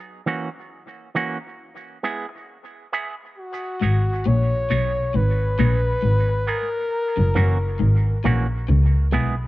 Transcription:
0.26 0.48 E3 medium
0.26 0.48 A#3 medium
0.26 0.48 C#4 medium
0.26 0.49 F#4 medium
1.15 1.36 E3 medium
1.15 1.37 A#3 medium
1.15 1.37 C#4 loud
1.15 1.37 F#4 loud
2.03 2.25 G#3 medium
2.03 2.25 B3 medium
2.03 2.25 E4 medium
2.03 2.26 G#4 medium
2.29 muted clean electric guitar stroke soft
2.92 3.14 G#3 medium
2.92 3.14 B3 medium
2.92 3.14 E4 medium
2.92 3.14 G#4 medium
3.38 4.29 F#4 loud
3.81 4.20 G#1 medium
3.81 4.08 G#2 medium
3.81 4.02 F#3 medium
3.81 4.03 B3 medium
3.81 4.03 D#4 medium
3.81 4.03 G#4 loud
4.26 4.65 A#1 medium
4.26 4.52 A#2 medium
4.26 5.17 C#5 loud
4.70 5.09 B1 medium
4.70 4.97 B2 medium
4.70 4.91 F#3 medium
4.70 4.91 B3 loud
4.70 4.92 D#4 medium
4.70 4.92 G#4 loud
5.14 5.53 G#1 loud
5.14 5.41 G#2 medium
5.14 6.50 B4 loud
5.58 5.81 A#1 loud
5.58 5.74 A#2 medium
5.58 5.79 F#3 medium
5.58 5.80 B3 medium
5.58 5.80 D#4 medium
5.58 5.80 G#4 medium
6.02 6.42 G#1 loud
6.02 6.29 G#2 medium
6.28 muted clean electric guitar stroke soft
6.47 6.68 F#3 medium
6.47 6.68 B3 medium
6.47 6.69 D#4 medium
6.47 6.69 G#4 loud
6.47 8.25 A#4 loud
7.17 7.34 F#1 medium
7.17 7.28 F#2 medium
7.35 7.74 F#1 medium
7.35 7.62 F#2 medium
7.35 7.56 E3 medium
7.35 7.57 A#3 medium
7.35 7.57 C#4 loud
7.35 7.57 F#4 medium
7.79 8.02 G#1 loud
7.79 7.95 G#2 medium
8.24 8.63 A#1 medium
8.24 8.51 A#2 medium
8.24 8.45 E3 medium
8.24 8.46 A#3 medium
8.24 8.46 C#4 medium
8.24 8.46 F#4 medium
8.68 9.07 C#2 loud
8.68 8.95 C#3 medium
9.12 9.35 B1 medium
9.12 9.28 B2 medium
9.12 9.34 G#3 medium
9.12 9.34 B3 medium
9.12 9.34 E4 medium
9.12 9.35 G#4 medium

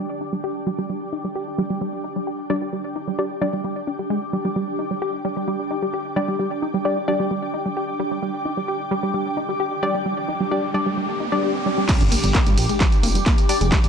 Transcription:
0.00 13.89 D4 medium
0.00 13.89 G4 medium
0.00 13.89 G5 medium
0.00 13.89 D6 medium
0.21 0.27 D#4 medium
0.33 0.36 G3 medium
0.44 0.52 G4 medium
0.67 0.70 G3 loud
0.79 0.86 G3 medium
0.90 0.98 G3 medium
1.13 1.18 D#4 medium
1.24 1.28 G3 medium
1.35 1.44 G4 medium
1.58 1.62 G3 loud
1.70 1.78 G3 medium
1.81 1.90 G3 medium
2.04 2.10 D#4 medium
2.16 2.19 G3 medium
2.27 2.35 G4 medium
2.50 2.64 G3 medium
2.50 2.53 G3 loud
2.50 2.64 D4 medium
2.50 2.64 D5 loud
2.62 2.70 G3 medium
2.73 2.81 G3 medium
2.96 3.01 D#4 medium
3.08 3.11 G3 medium
3.19 3.32 G3 medium
3.19 3.32 D4 medium
3.19 3.27 G4 medium
3.19 3.32 D5 medium
3.41 3.55 G3 medium
3.41 3.45 G3 loud
3.41 3.55 D4 medium
3.41 3.55 D5 loud
3.53 3.61 G3 medium
3.64 3.73 G3 medium
3.87 3.91 D4 medium
3.99 4.02 G3 medium
4.10 4.19 G#3 medium
4.33 4.36 G3 medium
4.45 4.48 G3 medium
4.56 4.64 G3 medium
4.79 4.85 D#4 medium
4.91 4.94 G3 medium
5.02 5.10 G4 medium
5.25 5.28 G3 medium
5.37 5.44 G3 medium
5.48 5.56 G3 medium
5.71 5.76 D#4 medium
5.83 5.86 G3 medium
5.94 6.02 G4 medium
6.16 6.30 G3 medium
6.16 6.20 G3 loud
6.16 6.30 D4 medium
6.16 6.30 D5 loud
6.28 6.36 G3 medium
6.39 6.48 G3 medium
6.62 6.68 D#4 medium
6.74 6.77 G3 medium
6.85 6.99 G3 medium
6.85 6.99 D4 medium
6.85 6.94 G4 medium
6.85 6.99 D5 medium
7.08 7.22 G3 medium
7.08 7.11 G3 loud
7.08 7.22 D4 medium
7.08 7.22 D5 loud
7.20 7.28 G3 medium
7.31 7.39 G3 medium
7.54 7.59 D#4 medium
7.66 7.69 G3 medium
7.77 7.85 G4 medium
8.00 8.03 G3 loud
8.11 8.19 G3 medium
8.22 8.31 G3 medium
8.22 riser medium
8.45 8.51 D#4 medium
8.57 8.60 G3 medium
8.68 8.77 G4 medium
8.91 8.95 G3 loud
9.03 9.11 G3 medium
9.14 9.23 G3 medium
9.37 9.43 D#4 medium
9.49 9.52 G3 medium
9.60 9.68 G4 medium
9.83 9.86 G3 loud
9.83 9.96 G3 medium
9.83 9.96 D4 medium
9.83 9.96 D5 loud
9.95 10.02 G3 medium
10.06 10.14 G3 medium
10.29 10.34 D#4 medium
10.40 10.44 G3 medium
10.51 10.65 G3 medium
10.51 10.65 D4 medium
10.51 10.60 G4 medium
10.51 10.65 D5 medium
10.74 10.78 G3 loud
10.74 10.88 G3 medium
10.74 10.88 D4 medium
10.74 10.88 D5 loud
10.86 10.94 G3 medium
10.97 11.06 G3 medium
11.20 11.26 D#4 medium
11.32 11.53 G3 medium
11.32 11.35 G3 medium
11.32 11.53 D4 medium
11.32 11.53 D5 loud
11.43 11.52 G4 medium
11.66 11.69 G3 loud
11.78 11.86 G3 medium
11.89 11.95 G3 loud
11.89 kick loud
11.89 clap loud
11.89 closed hi-hat loud
11.89 crash loud
11.89 ride medium
11.89 tambourine soft
11.89 impact medium
12.01 12.09 G1 loud
12.01 closed hi-hat medium
12.01 tambourine soft
12.12 12.15 A#3 loud
12.12 open hi-hat loud
12.12 ride medium
12.12 tambourine medium
12.24 12.31 G1 medium
12.24 12.31 G3 medium
12.24 closed hi-hat medium
12.24 tambourine soft
12.35 12.43 A#3 medium
12.35 kick loud
12.35 clap loud
12.35 closed hi-hat loud
12.35 ride medium
12.35 tambourine soft
12.46 12.54 G2 medium
12.46 closed hi-hat medium
12.46 tambourine soft
12.58 12.66 A#1 loud
12.58 12.66 G4 medium
12.58 open hi-hat loud
12.58 ride medium
12.58 tambourine medium
12.69 12.77 G#3 medium
12.69 closed hi-hat medium
12.69 tambourine soft
12.80 12.86 G3 loud
12.80 kick loud
12.80 clap loud
12.80 closed hi-hat loud
12.80 ride medium
12.80 tambourine soft
12.92 closed hi-hat medium
12.92 tambourine soft
13.03 13.20 F1 medium
13.03 13.07 A#3 loud
13.03 open hi-hat loud
13.03 ride medium
13.03 tambourine medium
13.15 13.23 G3 medium
13.15 closed hi-hat medium
13.15 tambourine soft
13.26 13.35 A#3 medium
13.26 kick loud
13.26 clap loud
13.26 closed hi-hat loud
13.26 ride medium
13.26 tambourine soft
13.38 closed hi-hat medium
13.38 tambourine soft
13.49 13.63 G3 medium
13.49 13.63 D4 medium
13.49 13.58 G4 medium
13.49 13.63 D5 loud
13.49 open hi-hat loud
13.49 ride medium
13.49 tambourine medium
13.61 13.77 F1 loud
13.61 13.69 G#3 medium
13.61 closed hi-hat medium
13.61 tambourine soft
13.72 13.78 G3 loud
13.72 kick loud
13.72 clap loud
13.72 closed hi-hat loud
13.72 ride medium
13.72 tambourine soft
13.84 13.89 G1 loud
13.84 closed hi-hat medium
13.84 tambourine soft

